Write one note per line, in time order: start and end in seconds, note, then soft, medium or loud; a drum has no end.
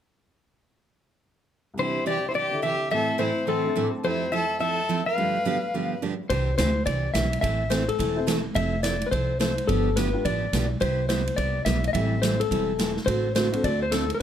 1.74 2.89 C2 medium
1.74 2.90 C3 soft
1.74 1.97 C3 medium
1.78 1.98 E3 soft
1.78 1.98 D4 medium
1.78 2.92 D4 soft
1.78 2.05 E4 medium
1.78 1.98 G4 medium
1.78 2.93 G4 soft
1.78 2.07 C5 medium
1.85 2.52 E5 medium
2.06 2.17 C3 medium
2.06 2.17 E3 medium
2.06 2.18 D4 medium
2.06 2.18 G4 medium
2.06 2.29 G4 medium
2.06 2.28 D5 medium
2.29 2.34 E4 medium
2.29 2.34 C5 medium
2.34 2.54 C3 medium
2.34 2.54 E3 medium
2.34 2.55 D4 medium
2.34 2.55 G4 medium
2.34 2.62 G4 medium
2.34 2.63 D5 medium
2.51 2.90 D3 soft
2.51 2.91 E4 soft
2.51 2.90 A4 soft
2.51 2.91 E5 medium
2.62 2.74 C3 medium
2.62 2.74 E3 medium
2.62 2.74 D4 medium
2.62 2.74 G4 medium
2.62 2.90 G4 medium
2.62 2.90 E5 medium
2.90 3.10 A2 soft
2.90 4.04 A2 medium
2.90 3.11 E3 medium
2.90 4.04 E3 medium
2.90 3.11 A3 medium
2.90 3.11 C4 medium
2.90 4.04 C4 medium
2.90 3.11 E4 medium
2.90 3.11 A4 medium
2.90 4.04 A4 soft
2.90 3.18 A4 medium
2.90 3.20 E5 loud
2.90 3.65 E5 medium
3.18 3.30 A2 medium
3.18 3.30 E3 medium
3.18 3.30 A3 medium
3.18 3.30 C4 medium
3.18 3.30 E4 medium
3.18 3.46 E4 medium
3.18 3.30 A4 medium
3.18 3.48 C5 medium
3.47 3.67 A2 medium
3.47 3.67 E3 medium
3.47 3.67 A3 medium
3.47 3.67 C4 medium
3.47 3.90 C4 medium
3.47 3.67 E4 medium
3.47 3.67 A4 medium
3.47 3.91 A4 medium
3.62 4.03 A3 soft
3.62 4.04 D4 soft
3.62 4.04 C5 soft
3.62 3.71 C7 soft
3.67 4.04 E5 soft
3.67 3.79 A6 medium
3.75 3.87 A2 medium
3.75 3.87 E3 medium
3.75 3.87 A3 medium
3.75 3.87 C4 medium
3.75 3.87 E4 medium
3.75 3.87 A4 medium
3.75 3.88 E6 soft
3.83 3.94 D6 medium
3.91 3.99 C6 medium
3.98 4.07 A5 medium
4.03 5.17 F2 soft
4.03 4.23 F3 soft
4.03 5.17 F3 soft
4.03 5.15 A3 soft
4.03 4.24 C4 medium
4.03 4.24 E4 medium
4.03 4.31 E4 medium
4.03 5.17 G4 soft
4.03 4.24 A4 medium
4.03 4.33 C5 medium
4.03 5.18 E5 medium
4.32 4.43 F3 medium
4.32 4.44 C4 medium
4.32 4.44 E4 medium
4.32 4.44 A4 medium
4.32 4.59 A4 medium
4.32 4.59 E5 medium
4.60 4.80 F3 soft
4.60 4.80 C4 medium
4.60 4.80 E4 medium
4.60 5.03 A4 medium
4.60 4.81 A4 medium
4.60 5.06 E5 medium
4.89 5.00 F3 medium
4.89 5.00 C4 medium
4.89 5.00 E4 medium
4.89 5.01 A4 medium
5.06 5.98 B4 medium
5.06 5.98 F5 medium
5.16 6.29 G2 soft
5.16 5.37 G2 medium
5.16 5.37 D3 medium
5.16 5.37 F3 medium
5.16 6.29 G3 medium
5.16 6.30 A3 soft
5.16 5.37 B3 medium
5.16 5.37 D4 medium
5.16 6.30 F4 soft
5.16 5.37 G4 medium
5.16 6.30 B4 medium
5.45 5.56 G2 medium
5.45 5.56 D3 medium
5.45 5.56 F3 medium
5.45 5.57 B3 medium
5.45 5.57 D4 medium
5.45 5.57 G4 medium
5.74 5.94 G2 soft
5.74 5.93 D3 soft
5.74 5.94 F3 soft
5.74 5.94 B3 medium
5.74 5.94 D4 medium
5.74 5.94 G4 soft
6.02 6.13 G2 medium
6.02 6.13 D3 medium
6.02 6.13 F3 medium
6.02 6.13 B3 medium
6.02 6.13 D4 medium
6.02 6.13 G4 medium
6.30 6.53 C2 medium
6.30 6.50 C3 medium
6.30 6.50 E3 medium
6.30 6.50 D4 medium
6.30 6.50 G4 medium
6.30 6.57 C5 medium
6.30 kick soft
6.30 ride medium
6.58 6.82 D2 medium
6.58 6.69 C3 medium
6.58 6.69 E3 medium
6.58 6.69 D4 medium
6.58 6.69 G4 medium
6.58 6.84 C5 medium
6.58 snare medium
6.58 hi-hat pedal medium
6.58 ride medium
6.85 7.10 C2 medium
6.85 7.06 C3 soft
6.85 7.06 E3 soft
6.85 7.06 D4 medium
6.85 7.06 G4 medium
6.85 7.13 D5 medium
6.85 kick soft
6.85 ride medium
7.14 7.38 B1 medium
7.14 7.25 C3 medium
7.14 7.26 E3 medium
7.14 7.26 D4 medium
7.14 7.26 G4 medium
7.14 7.40 E5 medium
7.14 snare medium
7.14 hi-hat pedal medium
7.14 ride medium
7.33 ride soft
7.41 7.88 A1 medium
7.41 7.62 E3 medium
7.41 7.62 A3 medium
7.41 7.62 C4 medium
7.41 7.62 E4 medium
7.41 7.63 A4 medium
7.41 7.71 E5 loud
7.41 kick soft
7.41 ride medium
7.70 7.82 E3 medium
7.70 7.82 A3 medium
7.70 7.82 C4 medium
7.70 7.82 E4 medium
7.70 7.82 A4 medium
7.70 7.87 C5 medium
7.70 snare medium
7.70 hi-hat pedal medium
7.70 ride medium
7.89 8.41 A4 medium
7.89 ride soft
7.98 8.45 E1 medium
7.98 8.18 E3 medium
7.98 8.19 A3 medium
7.98 8.19 C4 soft
7.98 8.19 E4 medium
7.98 8.19 A4 medium
7.98 kick soft
7.98 ride medium
8.16 8.26 C4 medium
8.16 8.26 E4 medium
8.16 8.26 A4 medium
8.16 8.26 C5 medium
8.27 8.38 E3 medium
8.27 8.39 A3 medium
8.27 8.39 C4 medium
8.27 8.39 E4 medium
8.27 8.39 A4 medium
8.27 snare medium
8.27 hi-hat pedal medium
8.27 ride medium
8.55 9.01 F1 medium
8.55 8.75 F3 medium
8.55 8.75 C4 medium
8.55 8.75 E4 medium
8.55 8.75 A4 medium
8.55 8.82 E5 loud
8.55 kick soft
8.55 ride medium
8.83 8.95 F3 medium
8.83 8.95 C4 medium
8.83 8.95 E4 medium
8.83 8.95 A4 medium
8.83 9.07 D5 medium
8.83 snare medium
8.83 hi-hat pedal medium
8.83 ride medium
9.01 ride soft
9.06 9.11 B4 medium
9.11 9.57 C2 medium
9.11 9.32 F3 medium
9.11 9.32 C4 medium
9.11 9.32 E4 medium
9.11 9.32 A4 medium
9.11 9.39 C5 medium
9.11 kick soft
9.11 ride medium
9.40 9.51 F3 medium
9.40 9.51 C4 medium
9.40 9.52 E4 medium
9.40 9.52 A4 medium
9.40 9.70 C5 medium
9.40 snare medium
9.40 hi-hat pedal soft
9.40 ride medium
9.58 ride soft
9.67 10.14 G1 medium
9.67 9.88 D3 medium
9.67 9.89 F3 medium
9.67 9.89 B3 medium
9.67 9.89 D4 medium
9.67 9.88 G4 medium
9.67 9.97 A4 medium
9.67 kick soft
9.67 ride medium
9.96 10.08 D3 medium
9.96 10.08 F3 medium
9.96 10.09 B3 medium
9.96 10.09 D4 medium
9.96 10.09 G4 medium
9.96 10.26 B4 medium
9.96 snare medium
9.96 hi-hat pedal medium
9.96 ride medium
10.13 10.23 D4 medium
10.13 10.23 F4 medium
10.13 10.24 G4 medium
10.13 10.24 B4 medium
10.25 10.49 A1 medium
10.25 10.45 D3 medium
10.25 10.45 F3 medium
10.25 10.45 B3 soft
10.25 10.45 D4 medium
10.25 10.45 G4 medium
10.25 10.68 D5 medium
10.25 kick soft
10.25 ride medium
10.53 10.77 B1 medium
10.53 10.64 D3 medium
10.53 10.65 F3 medium
10.53 10.65 B3 medium
10.53 10.65 D4 medium
10.53 10.65 G4 medium
10.53 snare medium
10.53 hi-hat pedal medium
10.53 ride medium
10.80 11.27 C2 medium
10.80 11.01 C3 medium
10.80 11.01 G3 medium
10.80 11.01 B3 medium
10.80 11.01 E4 medium
10.80 11.01 G4 medium
10.80 11.08 C5 medium
10.80 kick soft
10.80 ride medium
11.09 11.21 C3 medium
11.09 11.21 G3 medium
11.09 11.21 B3 medium
11.09 11.21 E4 medium
11.09 11.21 G4 medium
11.09 11.39 C5 medium
11.09 snare medium
11.09 hi-hat pedal medium
11.09 ride medium
11.27 ride soft
11.36 11.62 C2 medium
11.36 11.57 C3 soft
11.36 11.58 G3 soft
11.36 11.58 B3 medium
11.36 11.58 E4 medium
11.36 11.58 G4 medium
11.36 11.65 D5 medium
11.36 kick soft
11.36 ride medium
11.65 11.90 B1 medium
11.65 11.77 C3 medium
11.65 11.77 G3 medium
11.65 11.77 B3 medium
11.65 11.77 E4 medium
11.65 11.78 G4 medium
11.65 11.87 E5 medium
11.65 snare medium
11.65 hi-hat pedal medium
11.65 ride medium
11.84 11.93 D#5 medium
11.84 ride soft
11.93 12.40 A1 medium
11.93 12.14 E3 medium
11.93 12.14 G3 medium
11.93 12.36 C4 medium
11.93 12.14 C4 medium
11.93 12.37 E4 medium
11.93 12.14 E4 medium
11.93 12.37 G4 medium
11.93 12.14 A4 medium
11.93 12.37 A4 medium
11.93 12.23 E5 loud
11.93 kick soft
11.93 ride medium
12.22 12.34 E3 medium
12.22 12.34 G3 medium
12.22 12.34 C4 medium
12.22 12.34 E4 medium
12.22 12.34 A4 medium
12.22 12.40 C5 medium
12.22 snare medium
12.22 hi-hat pedal medium
12.22 ride medium
12.40 12.97 A4 medium
12.40 ride soft
12.51 12.97 E1 medium
12.51 12.71 E3 medium
12.51 12.71 G3 medium
12.51 12.71 C4 medium
12.51 12.71 E4 medium
12.51 12.71 A4 medium
12.51 kick soft
12.51 ride medium
12.79 12.90 E3 medium
12.79 12.90 G3 medium
12.79 12.91 C4 medium
12.79 12.91 E4 medium
12.79 12.91 A4 medium
12.79 snare medium
12.79 hi-hat pedal medium
12.79 ride medium
12.97 snare soft
13.06 13.53 A1 medium
13.06 13.27 D3 medium
13.06 13.27 A3 medium
13.06 13.28 C4 medium
13.06 13.27 F#4 medium
13.06 13.28 A4 medium
13.06 13.33 C5 loud
13.06 kick soft
13.06 ride medium
13.35 13.47 D3 medium
13.35 13.47 A3 medium
13.35 13.47 C4 medium
13.35 13.47 F#4 medium
13.35 13.47 A4 medium
13.35 13.65 C5 medium
13.35 snare medium
13.35 hi-hat pedal soft
13.35 ride medium
13.52 13.62 C4 medium
13.52 13.62 D4 medium
13.52 13.63 F#4 medium
13.52 13.63 A4 medium
13.52 ride medium
13.64 14.09 D2 medium
13.64 13.84 D3 medium
13.64 13.84 A3 medium
13.64 13.84 C4 medium
13.64 13.84 F#4 medium
13.64 13.84 A4 medium
13.64 13.82 D5 loud
13.64 kick soft
13.64 ride medium
13.82 13.93 C5 medium
13.92 14.04 D3 medium
13.92 14.04 A3 medium
13.92 14.04 C4 medium
13.92 14.04 F#4 medium
13.92 14.14 A4 medium
13.92 14.04 A4 medium
13.92 snare medium
13.92 hi-hat pedal soft
13.92 ride medium
14.10 ride soft
14.14 14.20 A#4 medium